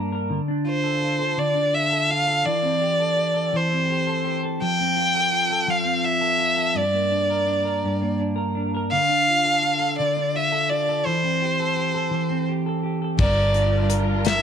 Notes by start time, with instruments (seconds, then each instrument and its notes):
Already playing: clean electric guitar G2 A#3 D4 A#4
0.12 clean electric guitar A#4
0.30 clean electric guitar D3
0.48 clean electric guitar D4
0.65 clean electric guitar F4, violin C5
0.84 clean electric guitar A4
1.02 clean electric guitar F4
1.19 clean electric guitar A4
1.37 clean electric guitar D3, violin D5
1.55 clean electric guitar D4
1.73 clean electric guitar F4, violin E5
1.90 clean electric guitar A4
2.10 clean electric guitar F4, violin F5
2.28 clean electric guitar A4
2.45 clean electric guitar E3, violin D5
2.63 clean electric guitar C4
2.81 clean electric guitar G4
3.00 clean electric guitar A4
3.16 clean electric guitar G4
3.34 clean electric guitar A4
3.53 clean electric guitar E3, violin C5
3.72 clean electric guitar C4
3.90 clean electric guitar G4
4.07 clean electric guitar A4
4.25 clean electric guitar G4
4.43 clean electric guitar A4
4.61 clean electric guitar F3, violin G5
4.80 clean electric guitar C4
4.96 clean electric guitar F4
5.15 clean electric guitar A4
5.31 clean electric guitar F4
5.51 clean electric guitar A4
5.67 clean electric guitar F3, violin F5
5.85 clean electric guitar C4
6.04 clean electric guitar F4, violin E5
6.21 clean electric guitar A4
6.38 clean electric guitar F4
6.56 clean electric guitar A4
6.74 clean electric guitar G2, violin D5
6.94 clean electric guitar A#3
7.11 clean electric guitar D4
7.30 clean electric guitar A#4
7.46 clean electric guitar D4
7.65 clean electric guitar A#4
7.84 clean electric guitar G2
8.01 clean electric guitar A#3
8.20 clean electric guitar D4
8.36 clean electric guitar A#4
8.55 clean electric guitar D4
8.75 clean electric guitar A#4
8.91 clean electric guitar D3, violin F5
9.09 clean electric guitar D4
9.28 clean electric guitar F4
9.45 clean electric guitar A4
9.62 clean electric guitar F4
9.79 clean electric guitar A4
9.98 clean electric guitar D3, violin D5
10.16 clean electric guitar D4
10.35 clean electric guitar F4, violin E5
10.52 clean electric guitar A4
10.70 clean electric guitar F4, violin D5
10.89 clean electric guitar A4
11.06 clean electric guitar E3, violin C5
11.23 clean electric guitar C4
11.42 clean electric guitar G4
11.60 clean electric guitar A4
11.77 clean electric guitar G4
11.95 clean electric guitar A4
12.11 clean electric guitar E3
12.30 clean electric guitar C4
12.49 clean electric guitar G4
12.66 clean electric guitar A4
12.83 clean electric guitar G4
13.02 clean electric guitar A4
13.17 fingered electric bass G1, clean electric guitar G2, string section G3 D4 F4 A#4, violin D5, kick, crash
13.21 clean electric guitar A#4
13.54 clean electric guitar D4, closed hi-hat
13.90 clean electric guitar A#4, closed hi-hat
14.25 clean electric guitar F3, violin E5, snare, closed hi-hat